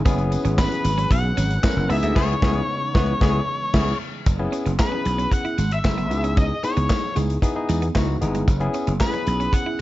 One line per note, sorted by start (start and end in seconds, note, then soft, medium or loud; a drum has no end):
0.00 4.23 E3 medium
0.05 0.36 F#1 loud
0.05 1.88 F#3 medium
0.05 0.89 B3 loud
0.05 0.16 B3 medium
0.05 0.89 C#4 medium
0.05 1.88 C#4 medium
0.05 0.90 E4 medium
0.05 1.88 G#4 medium
0.05 0.90 G#4 loud
0.05 1.88 B4 medium
0.05 kick loud
0.05 closed hi-hat loud
0.05 tambourine soft
0.18 closed hi-hat soft
0.32 muted clean electric guitar stroke soft
0.32 closed hi-hat medium
0.32 tambourine medium
0.45 0.65 G#1 medium
0.45 0.55 C#4 medium
0.45 closed hi-hat medium
0.58 0.69 B3 medium
0.58 1.13 B4 medium
0.58 kick loud
0.58 snare loud
0.58 clap medium
0.58 tambourine medium
0.72 closed hi-hat soft
0.84 1.04 G#1 medium
0.84 muted clean electric guitar stroke medium
0.84 closed hi-hat medium
0.84 tambourine medium
0.98 1.08 C#4 medium
0.98 closed hi-hat soft
1.11 1.31 B1 medium
1.11 1.86 F#5 loud
1.11 kick loud
1.11 closed hi-hat medium
1.37 1.57 G#1 medium
1.37 1.48 C#4 medium
1.37 closed hi-hat medium
1.37 tambourine medium
1.50 closed hi-hat soft
1.63 1.88 B3 medium
1.63 1.90 C#4 medium
1.63 1.89 E4 medium
1.63 1.90 A#4 medium
1.63 muted clean electric guitar stroke soft
1.63 kick loud
1.63 snare loud
1.63 clap medium
1.63 tambourine medium
1.77 1.87 F#1 medium
1.90 2.00 C#2 loud
1.90 4.24 C#3 medium
1.90 4.25 G#3 medium
1.90 2.14 B3 medium
1.90 2.00 B3 medium
1.90 4.24 B3 medium
1.90 2.16 D#4 medium
1.90 4.24 D#4 medium
1.90 2.15 E4 medium
1.90 2.15 G#4 medium
1.90 2.16 E5 loud
1.90 open hi-hat medium
2.03 2.13 D2 medium
2.03 2.13 G#3 medium
2.03 closed hi-hat medium
2.16 2.34 C#2 loud
2.16 2.34 B3 loud
2.16 2.34 E4 loud
2.16 2.34 G#4 loud
2.16 3.97 C#5 medium
2.16 kick loud
2.16 snare loud
2.16 crash loud
2.42 2.60 C#2 loud
2.42 2.60 B3 loud
2.42 2.61 E4 loud
2.42 2.61 G#4 loud
2.42 kick loud
2.42 snare loud
2.94 3.13 C#2 loud
2.94 3.13 B3 loud
2.94 3.13 E4 loud
2.94 3.13 B4 loud
2.94 kick loud
2.94 snare loud
3.21 3.39 C#2 loud
3.21 3.39 B3 medium
3.21 3.39 E4 loud
3.21 3.39 G#4 loud
3.21 kick loud
3.21 snare loud
3.73 3.92 C#2 loud
3.73 3.92 B3 medium
3.73 3.92 E4 loud
3.73 3.92 G#4 medium
3.73 kick medium
3.73 snare loud
3.73 crash medium
4.26 4.47 F#1 medium
4.26 kick loud
4.26 closed hi-hat medium
4.26 tambourine soft
4.39 4.71 B3 medium
4.39 4.71 C#4 medium
4.39 4.71 E4 medium
4.39 4.71 G#4 medium
4.39 muted clean electric guitar stroke soft
4.52 4.63 C#4 medium
4.52 closed hi-hat medium
4.52 tambourine soft
4.66 4.76 F#1 medium
4.66 4.76 B3 medium
4.66 closed hi-hat medium
4.79 5.63 B3 medium
4.79 5.63 C#4 medium
4.79 5.63 E4 medium
4.79 5.63 G#4 medium
4.79 5.29 B4 medium
4.79 kick loud
4.79 snare loud
4.79 clap medium
4.79 tambourine medium
4.92 5.03 C#4 medium
5.05 5.26 B1 medium
5.05 muted clean electric guitar stroke soft
5.05 closed hi-hat medium
5.05 tambourine soft
5.18 5.29 C#4 medium
5.18 closed hi-hat soft
5.31 5.73 F#5 medium
5.31 muted clean electric guitar stroke soft
5.31 kick medium
5.31 closed hi-hat medium
5.45 5.55 E4 medium
5.45 closed hi-hat soft
5.58 5.78 G#1 medium
5.58 5.69 G#3 medium
5.58 closed hi-hat medium
5.58 tambourine soft
5.71 6.38 E5 medium
5.71 closed hi-hat soft
5.85 6.11 F#1 medium
5.85 kick loud
5.85 snare loud
5.85 clap medium
5.85 tambourine medium
5.98 6.08 B3 medium
5.98 closed hi-hat soft
6.10 6.51 C#2 medium
6.10 6.53 B3 medium
6.10 6.53 D#4 medium
6.10 6.53 E4 medium
6.10 6.17 F#4 medium
6.10 muted clean electric guitar stroke soft
6.10 closed hi-hat medium
6.10 tambourine soft
6.17 6.56 G#4 medium
6.24 6.34 C#4 medium
6.24 closed hi-hat medium
6.37 6.48 C#4 medium
6.37 6.64 D#5 medium
6.37 kick loud
6.37 closed hi-hat medium
6.37 tambourine soft
6.63 7.05 B3 medium
6.63 7.05 D#4 medium
6.63 7.05 E4 medium
6.63 7.06 G#4 medium
6.63 7.13 C#5 medium
6.63 muted clean electric guitar stroke soft
6.63 closed hi-hat medium
6.63 tambourine soft
6.77 6.87 C#2 medium
6.77 6.87 B3 medium
6.77 closed hi-hat soft
6.90 kick loud
6.90 snare loud
6.90 clap medium
6.90 tambourine medium
7.15 7.36 C#2 medium
7.15 7.27 G#3 medium
7.15 7.37 B3 medium
7.15 7.37 D#4 medium
7.15 7.37 E4 medium
7.15 7.37 G#4 medium
7.15 closed hi-hat medium
7.15 tambourine soft
7.30 closed hi-hat soft
7.42 7.53 B3 medium
7.42 7.53 D#4 medium
7.42 7.53 E4 medium
7.42 7.53 G#4 loud
7.42 muted clean electric guitar stroke soft
7.42 kick medium
7.42 closed hi-hat medium
7.42 tambourine soft
7.55 7.87 B3 medium
7.55 7.87 D#4 medium
7.55 7.87 E4 medium
7.55 7.87 G#4 medium
7.69 7.89 E2 medium
7.69 7.79 G#3 medium
7.69 closed hi-hat medium
7.69 tambourine soft
7.82 7.93 B3 medium
7.82 closed hi-hat soft
7.95 8.15 C#2 medium
7.95 8.16 B3 medium
7.95 8.06 B3 medium
7.95 8.16 D#4 medium
7.95 8.16 E4 medium
7.95 8.16 F#4 loud
7.95 kick loud
7.95 snare loud
7.95 clap medium
7.95 tambourine medium
8.09 muted clean electric guitar stroke soft
8.21 8.42 G1 medium
8.21 8.47 B3 medium
8.21 8.48 D#4 medium
8.21 8.48 E4 medium
8.21 8.48 G#4 medium
8.21 closed hi-hat medium
8.35 8.45 G#3 medium
8.35 closed hi-hat medium
8.48 8.68 F#1 medium
8.48 kick loud
8.48 closed hi-hat medium
8.48 tambourine soft
8.60 8.92 B3 loud
8.60 8.92 C#4 loud
8.60 8.92 E4 loud
8.60 8.92 G#4 loud
8.60 muted clean electric guitar stroke soft
8.60 closed hi-hat soft
8.74 8.85 C#4 medium
8.74 closed hi-hat medium
8.74 tambourine soft
8.87 8.97 F#1 medium
8.87 8.98 B3 medium
8.87 closed hi-hat medium
9.00 9.81 B3 medium
9.00 9.81 C#4 medium
9.00 9.81 E4 medium
9.00 9.07 G4 medium
9.00 9.55 B4 medium
9.00 kick loud
9.00 snare loud
9.00 clap medium
9.00 tambourine medium
9.07 9.81 G#4 medium
9.13 9.24 C#4 medium
9.13 closed hi-hat soft
9.27 9.47 B1 medium
9.27 muted clean electric guitar stroke soft
9.27 closed hi-hat medium
9.27 tambourine soft
9.40 9.50 C#4 medium
9.40 closed hi-hat soft
9.53 9.81 F#5 medium
9.53 muted clean electric guitar stroke soft
9.53 kick medium
9.53 closed hi-hat medium
9.53 tambourine soft
9.66 9.77 E4 medium